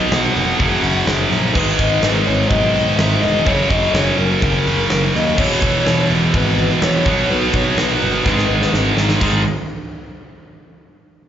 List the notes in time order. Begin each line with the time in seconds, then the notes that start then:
Already playing: B2 F#3 B3 D#5
0.12 B1 F#5, snare, open hi-hat
0.36 F1, open hi-hat
0.59 F#1 F#2 C#3 F#3, kick, open hi-hat
0.83 F#1, open hi-hat
1.07 F#1, snare, open hi-hat
1.32 A#1, snare, open hi-hat
1.54 G#1 G#2 D#3 G#3 B4, kick, crash
1.79 G#1 D#5, kick, open hi-hat
2.03 G#1 B4, snare, open hi-hat
2.27 G#1 C#5, open hi-hat
2.49 B1 D#5, kick, open hi-hat
2.72 D#5, open hi-hat
2.97 G#1 E5, snare, open hi-hat
3.21 E1 D#5, open hi-hat
3.45 F#1 F#2 C#3 F#3 C#5, kick, open hi-hat
3.70 F#1 D#5, kick, open hi-hat
3.93 F#1 C#5, snare, open hi-hat
4.18 F#1 A#4, open hi-hat
4.42 F#1, kick, open hi-hat
4.67 F#1, open hi-hat
4.90 F#1, snare, open hi-hat
5.15 D#2 D#5, snare, open hi-hat
5.37 E1 E2 B2 C#5, kick, crash
5.41 E3
5.62 E1, kick, open hi-hat
5.87 E1, snare, open hi-hat
6.10 E1, open hi-hat
6.34 G#1 B4, kick, open hi-hat
6.58 open hi-hat
6.82 E1 C#5, snare, open hi-hat
7.05 B1 B2 F#3 B3, kick, snare, open hi-hat
7.30 B1 B4, open hi-hat
7.54 B1 C#5, kick, open hi-hat
7.78 B1 B4, snare, open hi-hat
8.02 G1, open hi-hat
8.24 G#1 G#2 D#3, kick, snare
8.28 G#3
8.38 snare
8.49 G#1
8.62 snare
8.73 G#1, snare
8.96 G#1, snare
9.09 snare
9.21 G#1 G#2 D#3 G#3 G#4, kick, crash